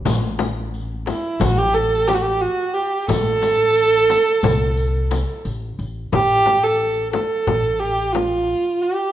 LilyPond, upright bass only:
\new Staff \with { instrumentName = "Upright bass" } { \clef bass \time 9/8 \tempo 4. = 59 a,,2 a,,2 r8 | a,,2 c,4. a,,8 a,,8 | a,,2 a,,2 r8 | }